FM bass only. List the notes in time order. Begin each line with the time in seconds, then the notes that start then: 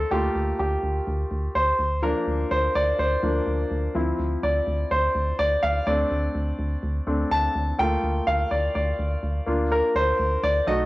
0.11 D2
0.35 D2
0.59 D2
0.83 D2
1.07 D2
1.31 D2
1.55 D2
1.79 D2
2.27 D2
2.51 D2
2.75 D2
2.99 D2
3.23 D2
3.47 D2
3.71 D2
3.95 D2
4.19 D2
4.43 D2
4.67 D2
4.91 D2
5.15 D2
5.39 D2
5.63 D2
5.87 D2
6.11 D2
6.35 D2
6.59 D2
6.83 D2
7.07 D2
7.31 D2
7.55 D2
7.79 D2
8.03 D2
8.27 D2
8.51 D2
8.75 D2
8.99 D2
9.23 D2
9.47 D2
9.95 D2
10.19 D2
10.43 D2
10.67 B1